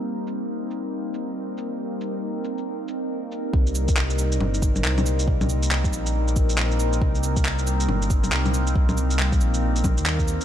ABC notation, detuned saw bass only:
X:1
M:4/4
L:1/16
Q:"Swing 16ths" 1/4=138
K:Cm
V:1 name="Detuned saw bass" clef=bass
z16 | z16 | C,,8 G,,,4 C,,4- | C,,6 B,,,8- B,,,2 |
C,,8 G,,,4 C,,4- | C,,6 B,,,4 B,,, E,,4 z |]